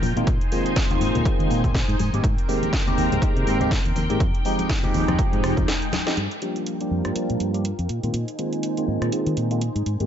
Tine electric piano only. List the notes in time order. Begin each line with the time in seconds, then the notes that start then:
0.16 D#3 G#3 A#3 C4 F4
0.52 D#3 G#3 A#3 C4 F4
0.90 D#3 G#3 A#3 C4 F4
1.25 D#3 G#3 A#3 C4 F4
1.64 D#3 G#3 A#3 C4 F4
2.13 D#3 G#3 A#3 C4 G4
2.48 D#3 G#3 A#3 C4 G4
2.87 D#3 G#3 A#3 C4 G4
3.22 D#3 G#3 A#3 C4 G4
3.60 D#3 G#3 A#3 C4 G4
4.09 D#3 G#3 A#3 C4 G4
4.45 F3 G#3 C4 D#4 G4
4.83 F3 G#3 C4 D#4 G4
5.19 F3 G#3 C4 D#4 G4
5.57 F3 G#3 C4 D#4 G4
6.06 F3 G#3 C4 D#4 G4
6.42 F3 G3 A#3 D4 G4
6.80 F3 G3 A#3 D4 G4
7.15 F3 G3 A#3 D4 G4
7.54 F3 G3 A#3 D4 G4
8.03 D#3 G#3 A#3 C4 F4
8.38 D#3 G#3 A#3 C4 F4
8.77 D#3 G#3 A#3 C4 F4
9.12 D#3 G#3 A#3 C4 F4
9.51 D#3 G#3 A#3 C4 F4
10.00 D#3 G#3 A#3 C4 G4